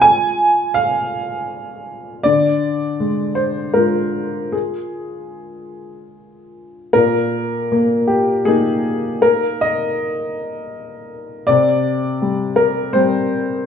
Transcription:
<<
  \new Staff \with { instrumentName = "Upright piano" } { \time 3/4 \key bes \mixolydian \tempo 4 = 80 aes''4 f''4. r8 | d''4. c''8 bes'4 | aes'2 r4 | bes'4. g'8 aes'4 |
bes'8 ees''2 r8 | d''4. bes'8 c''4 | }
  \new Staff \with { instrumentName = "Upright piano" } { \clef bass \time 3/4 \key bes \mixolydian <aes f'>2. | d4 aes4 <aes f'>4~ | <aes f'>2. | bes,4 bes4 <bes ees'>4~ |
<bes ees'>2. | c4 g4 <g c'>4 | }
>>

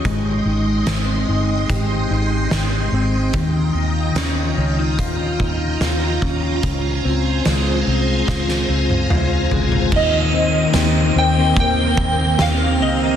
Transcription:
<<
  \new Staff \with { instrumentName = "Synth bell" } { \time 4/4 \key ees \mixolydian \tempo 4 = 73 r1 | r1 | r1 | ees''4. g''8 g''4 f''8 ees''8 | }
  \new Staff \with { instrumentName = "String machine" } { \time 4/4 \key ees \mixolydian << { <aes c'''>1 | <f' bes''>1~ | <f' bes''>1 | <ees bes'>1 | } \\ { <ees'' g''>1~ | <ees'' g''>1 | <c'' aes''>1 | <bes c'>1 | } >> }
  \new Staff \with { instrumentName = "Clean electric guitar" } { \time 4/4 \key ees \mixolydian aes8 ees'8 c'8 ees'8 g'8 ees'8 g'8 c'8 | ees8 ees'8 des'8 des'16 ees'16 f'8 ees'8 f'8 des'8 | r8 c'8 aes8 c'8 f'8 c'8 f'8 aes8 | ees8 c'8 g'8 c'8 bes8 c'8 g'8 c'8 | }
  \new Staff \with { instrumentName = "Fingered electric bass" } { \clef bass \time 4/4 \key ees \mixolydian aes,,8 aes,,8 aes,,8 g,,8 aes,,8 aes,,8 aes,,8 aes,,8 | ees,8 ees,8 ees,8 des,8 ees,8 ees,8 ees,8 ees,8 | des,8 des,8 des,8 c,8 des,8 des,8 des,8 des,8 | ees,4 ees,8 ees,8 ees,8 ees,8 ees,8 des,8 | }
  \new DrumStaff \with { instrumentName = "Drums" } \drummode { \time 4/4 <hh bd>4 <hh sn>4 <hh bd>4 <hh sn>4 | <hh bd>4 <hh sn>4 <hh bd>8 bd8 <hh sn>8 bd8 | <hh bd>4 <hh sn>4 <bd sn>16 sn8 tommh16 toml8 tomfh16 tomfh16 | <cymc bd>4 <cymr sn tamb>4 <bd cymr>8 bd8 <cymr sn tamb>4 | }
>>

